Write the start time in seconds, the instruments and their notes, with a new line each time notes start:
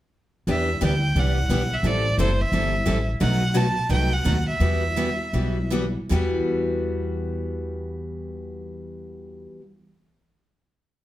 0.47 upright bass E2, steel-string acoustic guitar E3 G3 B3 D4 E4 G4 B4, violin E5
0.81 upright bass D2, steel-string acoustic guitar E3 G3 B3 D4 E4 G4 B4
0.85 violin G5
1.15 upright bass C2, steel-string acoustic guitar E3 G3 B3 D4 E4 G4 B4, violin F#5
1.49 upright bass B1, steel-string acoustic guitar E3 G3 B3 D4 E4 G4 B4
1.73 violin E5
1.83 upright bass A1, steel-string acoustic guitar E3 G3 C4 E4 A4, violin D5
2.18 upright bass F#1, steel-string acoustic guitar E3 G3 C4 E4 A4, violin C5
2.41 violin E5
2.52 upright bass G1, steel-string acoustic guitar E3 G3 C4 E4 A4
2.86 upright bass A1, steel-string acoustic guitar E3 G3 C4 E4 A4
3.21 upright bass B1, steel-string acoustic guitar B2 F#3 A3 D#4 F#4 B4, violin F#5
3.55 steel-string acoustic guitar B2 F#3 A3 D#4 F#4 B4, violin A5
3.89 upright bass C2, steel-string acoustic guitar B2 F#3 A3 D#4 F#4 B4, violin G5
4.13 violin F#5
4.25 upright bass D#2, steel-string acoustic guitar B2 F#3 A3 D#4 F#4 B4
4.48 violin E5
4.60 upright bass E2, steel-string acoustic guitar E3 G3 B3 F#4
4.96 steel-string acoustic guitar E3 G3 B3 F#4
5.33 upright bass B1, steel-string acoustic guitar E3 G3 B3 F#4
5.70 steel-string acoustic guitar E3 G3 B3 F#4
6.09 upright bass E2, steel-string acoustic guitar E3 G3 B3 F#4